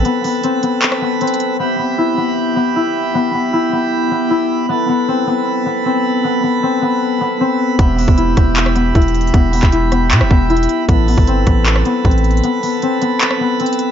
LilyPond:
<<
  \new Staff \with { instrumentName = "Pipe organ" } { \time 4/4 \key e \minor \tempo 4 = 155 << { b''1 | b''1~ | b''1~ | b''1~ |
b''1~ | b''1~ | b''1 | b''1~ |
b''1 | } \\ { <a' b'>1 | <g' e''>1~ | <g' e''>1 | <a' b'>1~ |
<a' b'>1 | <g' e''>1~ | <g' e''>1 | <a' b'>1~ |
<a' b'>1 | } >> }
  \new Staff \with { instrumentName = "Harp" } { \time 4/4 \key e \minor <b c'>8 b8 c'8 b4 b8 c'4 | b8 b8 e'8 b4 b8 e'4 | b8 b8 e'8 b4 b8 e'4 | b8 b8 c'8 b4 b8 c'4 |
b8 b8 c'8 b4 b8 c'4 | b8 b8 e'8 b4 b8 e'4 | b8 b8 e'8 b4 b8 e'4 | b8 b8 c'8 b4 b8 c'4 |
b8 b8 c'8 b4 b8 c'4 | }
  \new Staff \with { instrumentName = "808-style bass" } { \clef bass \time 4/4 \key e \minor r1 | r1 | r1 | r1 |
r1 | e,,8. e,,8. e,,4. e,,4 | e,,8. e,,4~ e,,16 b,16 e,,16 e,,4 r8 | a,,8. g,,8. a,,4 r8 a,,4 |
r1 | }
  \new DrumStaff \with { instrumentName = "Drums" } \drummode { \time 4/4 hh8 hho8 hh8 hh8 <hc hh>16 ss8. \tuplet 3/2 { hh16 hh16 hh16 hh16 r16 r16 } | r4 r4 r4 r4 | r4 r4 r4 r4 | r4 r4 r4 r4 |
r4 r4 r4 r4 | <hh bd>8 hho16 bd16 hh8 <hh bd ss>8 <hc hh>16 ss16 hh8 \tuplet 3/2 { <hh bd>16 hh16 hh16 hh16 hh16 hh16 } | <hh bd>8 <hh hho>16 <hc hh bd>16 hh8 <hh ss>8 <hc hh>16 ss16 bd8 \tuplet 3/2 { hh16 hh16 hh16 hh16 r16 r16 } | <hh bd>8 hho16 bd16 hh8 <hh bd ss>8 <hc hh>16 ss16 hh8 \tuplet 3/2 { <hh bd>16 hh16 hh16 hh16 hh16 hh16 } |
hh8 hho8 hh8 hh8 <hc hh>16 ss8. \tuplet 3/2 { hh16 hh16 hh16 hh16 r16 r16 } | }
>>